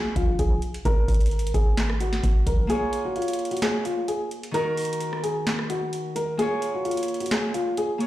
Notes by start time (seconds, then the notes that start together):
Already playing: G#4
0.16 A#1 F4, kick, closed hi-hat
0.39 A#1 G#4, kick, closed hi-hat
0.62 closed hi-hat
0.74 closed hi-hat
0.85 G#1 A#4, kick, closed hi-hat
1.08 G#1, kick, closed hi-hat, open hi-hat
1.14 closed hi-hat
1.21 closed hi-hat
1.26 closed hi-hat
1.31 closed hi-hat
1.39 closed hi-hat
1.47 closed hi-hat
1.54 G#1 G#4, kick, closed hi-hat
1.77 snare, clap, closed hi-hat
1.90 cross-stick
2.00 F#4, closed hi-hat
2.13 snare, closed hi-hat
2.24 G#1, kick, closed hi-hat
2.47 A#1 A#4, kick, closed hi-hat
2.67 A#3 F4 G#4, closed hi-hat
2.72 C#5
2.93 closed hi-hat
3.05 F#4
3.16 F4, closed hi-hat
3.22 closed hi-hat
3.28 closed hi-hat
3.33 closed hi-hat
3.39 closed hi-hat
3.45 closed hi-hat
3.51 F#4, closed hi-hat
3.57 closed hi-hat
3.62 G#4, snare, clap, closed hi-hat
3.85 F4, closed hi-hat
4.08 G#4, closed hi-hat
4.31 closed hi-hat
4.43 closed hi-hat
4.51 D#3 D#4 F#4 A#4, closed hi-hat
4.56 A#4
4.77 closed hi-hat, open hi-hat
4.85 closed hi-hat
4.93 closed hi-hat
5.00 closed hi-hat
5.13 cross-stick
5.23 G#4, closed hi-hat
5.47 snare, clap, closed hi-hat
5.59 cross-stick
5.70 F#4, closed hi-hat
5.93 closed hi-hat
6.16 A#4, closed hi-hat
6.37 A#3 F4 G#4, closed hi-hat
6.42 C#5
6.62 closed hi-hat
6.75 F#4
6.85 F4, closed hi-hat
6.91 closed hi-hat
6.97 closed hi-hat
7.03 closed hi-hat
7.08 closed hi-hat
7.14 closed hi-hat
7.20 F#4, closed hi-hat
7.26 closed hi-hat
7.31 G#4, snare, clap, closed hi-hat
7.54 F4, closed hi-hat
7.77 G#4, closed hi-hat
7.98 A#3 F4 G#4 C#5, closed hi-hat